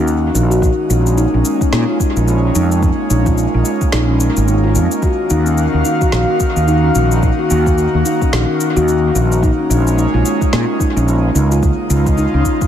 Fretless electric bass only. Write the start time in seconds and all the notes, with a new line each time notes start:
Already playing: D#2
0.35 A#1
0.90 A#1
1.34 A#1
1.72 A#2
2.16 A#1
2.55 F2
3.10 A#1
3.54 A#1
3.93 A#1
4.37 G#1
4.75 F2
5.30 D#2
5.74 D#2
6.13 A#1
6.56 D#2
6.95 A#1
7.51 D#2
7.94 D#2
8.33 A#1
8.77 D#2
9.15 A#1
9.70 A#1
10.14 A#1
10.53 A#2
10.96 A#1
11.35 C#2
11.90 C#2
12.34 C#2